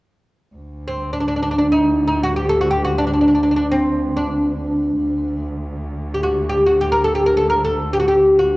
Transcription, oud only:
0.88 1.13 C4 medium
1.13 1.19 D4 medium
1.21 1.27 D4 soft
1.28 1.35 D4 medium
1.36 1.41 D4 soft
1.43 1.50 D4 medium
1.51 1.57 D4 soft
1.58 1.66 D4 medium
1.72 2.06 D#4 medium
2.08 2.23 D#4 medium
2.24 2.36 F#4 medium
2.36 2.49 G4 medium
2.49 2.61 A4 medium
2.61 2.70 F#4 medium
2.71 2.84 G4 medium
2.85 2.98 F#4 medium
2.98 3.06 D4 medium
3.07 3.12 D4 soft
3.14 3.20 D4 soft
3.21 3.27 D4 soft
3.28 3.33 D4 soft
3.35 3.42 D4 soft
3.43 3.50 D4 soft
3.51 3.55 D4 soft
3.56 3.65 D4 medium
3.72 4.18 C4 medium
4.17 5.48 D4 medium
6.14 6.21 G4 soft
6.23 6.49 F#4 medium
6.49 6.65 G4 medium
6.66 6.78 F#4 medium
6.81 6.91 G4 medium
6.92 7.03 A#4 medium
7.04 7.15 A4 medium
7.15 7.26 G4 medium
7.26 7.36 A#4 medium
7.37 7.49 A4 medium
7.50 7.64 A#4 medium
7.65 7.92 A4 medium
7.93 8.00 G4 medium
8.00 8.07 F#4 medium
8.08 8.38 G4 medium
8.39 8.57 F#4 medium

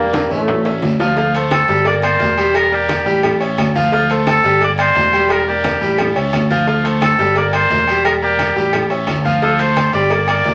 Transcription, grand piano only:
0.00 0.25 A#3 medium
0.00 0.26 A#4 medium
0.00 0.25 D5 medium
0.31 0.59 C#4 medium
0.31 0.59 C#5 medium
0.31 0.60 E5 medium
0.66 0.94 C#4 medium
0.66 0.94 C#5 medium
0.66 0.94 E5 medium
1.00 1.14 F3 medium
1.00 1.14 F4 medium
1.00 1.14 F5 medium
1.18 1.31 F3 medium
1.18 1.32 F4 medium
1.18 1.32 F5 medium
1.35 1.63 A3 medium
1.35 1.63 A4 medium
1.35 1.64 C5 medium
1.69 1.83 G3 medium
1.69 1.83 G4 medium
1.69 1.83 G5 medium
1.86 2.00 A#3 medium
1.86 2.00 A#4 medium
1.86 2.01 D5 medium
2.04 2.32 A#3 medium
2.04 2.32 A#4 medium
2.04 2.32 D5 medium
2.38 2.66 G3 medium
2.38 2.66 G4 medium
2.38 2.66 G5 loud
2.72 3.00 A#3 medium
2.72 3.00 A#4 medium
2.72 3.01 D5 medium
3.06 3.34 G3 medium
3.06 3.34 G4 loud
3.06 3.34 G5 medium
3.40 3.69 C#4 medium
3.40 3.69 C#5 medium
3.40 3.69 E5 medium
3.75 3.89 F3 medium
3.75 3.89 F4 loud
3.75 3.90 F5 loud
3.93 4.07 F3 medium
3.93 4.07 F4 loud
3.93 4.07 F5 medium
4.10 4.38 A3 medium
4.10 4.38 A4 medium
4.10 4.38 C5 medium
4.44 4.58 G3 medium
4.44 4.58 G4 medium
4.44 4.59 G5 medium
4.61 4.75 A#3 medium
4.61 4.75 A#4 medium
4.61 4.75 D5 medium
4.79 5.07 A#3 medium
4.79 5.07 A#4 medium
4.79 5.07 D5 medium
5.14 5.41 G3 loud
5.14 5.41 G4 medium
5.14 5.42 G5 medium
5.48 5.76 A#3 medium
5.48 5.76 A#4 medium
5.48 5.76 D5 medium
5.81 6.09 G3 medium
5.81 6.10 G4 medium
5.81 6.10 G5 medium
6.15 6.44 C#4 medium
6.15 6.44 C#5 medium
6.15 6.44 E5 medium
6.50 6.64 F3 loud
6.50 6.65 F4 medium
6.50 6.65 F5 medium
6.67 6.81 F3 medium
6.67 6.82 F4 medium
6.67 6.82 F5 medium
6.84 7.12 A3 medium
6.84 7.13 A4 medium
6.84 7.13 C5 medium
7.19 7.33 G3 medium
7.19 7.33 G4 medium
7.19 7.33 G5 medium
7.37 7.51 A#3 medium
7.37 7.51 A#4 medium
7.37 7.51 D5 medium
7.53 7.81 A#3 medium
7.53 7.82 A#4 medium
7.53 7.82 D5 medium
7.88 8.16 G3 medium
7.88 8.17 G4 medium
7.88 8.17 G5 medium
8.22 8.51 A#3 medium
8.22 8.50 A#4 medium
8.22 8.51 D5 medium
8.56 8.84 G3 medium
8.56 8.85 G4 medium
8.56 8.85 G5 medium
8.90 9.19 C#4 medium
8.90 9.19 C#5 medium
8.90 9.19 E5 medium
9.24 9.39 F3 medium
9.24 9.39 F4 medium
9.24 9.39 F5 loud
9.42 9.56 F3 medium
9.42 9.57 F4 medium
9.42 9.57 F5 medium
9.59 9.88 A3 medium
9.59 9.88 A4 medium
9.59 9.88 C5 medium
9.93 10.07 G3 medium
9.93 10.07 G4 medium
9.93 10.08 G5 medium
10.10 10.25 A#3 medium
10.10 10.25 A#4 medium
10.10 10.25 D5 medium
10.28 10.54 A#3 medium
10.28 10.54 A#4 medium
10.28 10.54 D5 medium

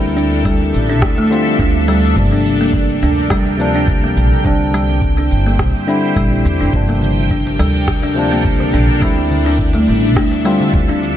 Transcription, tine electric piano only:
0.00 1.27 D3 medium
0.00 1.27 G3 medium
0.00 1.28 C4 medium
0.00 1.29 E4 medium
1.30 1.39 D3 medium
1.30 1.39 G3 medium
1.30 1.39 C4 medium
1.30 1.40 F4 medium
2.15 3.56 C3 medium
2.15 3.56 F3 medium
2.15 3.57 A#3 medium
2.19 3.58 D4 medium
3.57 4.41 C3 medium
3.57 4.42 F3 medium
3.57 4.42 A#3 medium
3.61 4.43 D4 loud
4.43 5.84 D3 medium
4.43 5.85 G3 medium
4.43 5.85 C4 medium
4.43 5.86 D4 loud
5.87 5.96 D3 medium
5.87 5.96 G3 medium
5.87 5.96 C4 medium
5.87 5.97 E4 medium
6.72 8.13 C3 medium
6.72 8.13 F3 medium
6.72 8.14 A#3 medium
6.76 8.15 D4 medium
8.15 8.98 C3 medium
8.15 8.99 F3 medium
8.15 9.00 A#3 medium
8.19 9.00 D4 loud
9.00 10.41 D3 medium
9.00 10.42 G3 medium
9.00 10.42 C4 medium
9.05 10.43 E4 medium
10.44 10.53 D3 medium
10.44 10.53 G3 medium
10.44 10.54 C4 medium
10.44 10.54 F4 medium

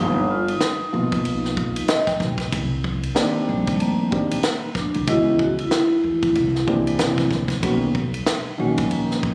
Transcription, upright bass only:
0.00 0.52 G1 loud
0.94 1.72 B1 medium
2.20 2.47 B1 loud
2.53 3.07 C2 loud
3.49 4.27 A#1 medium
4.95 5.06 C2 medium
5.08 5.62 C#2 loud
6.04 6.31 E2 medium
6.36 6.63 C2 loud
6.68 6.95 C2 medium
7.00 7.27 C3 loud
7.31 7.58 C2 medium
7.63 8.17 B1 loud
8.60 9.34 A#1 medium

